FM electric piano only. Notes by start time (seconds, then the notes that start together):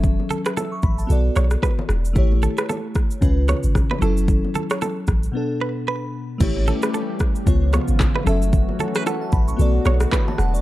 Already playing: F#3 C#4 A4 E5
0.57 E6
0.72 C#6
0.83 B5
0.98 A5
1.07 B3 F#4 A4
1.12 D5
2.13 A3 E4 G4
2.18 C#5
3.21 C#3 C#4 F4 B4
3.99 F#3 C#4 E4
4.04 A4
5.32 B2 B3 D4
5.37 A4
5.88 B5
6.38 A3 E4 G4
6.43 C#5
7.46 C#3 B3 F4 C#5
8.24 F#3 C#4 A4
8.29 E5
9.06 F#5
9.21 A5
9.33 B5
9.48 C#6
9.57 B3 F#4 A4
9.62 D5
10.12 B5
10.28 A5
10.39 F#5
10.54 D5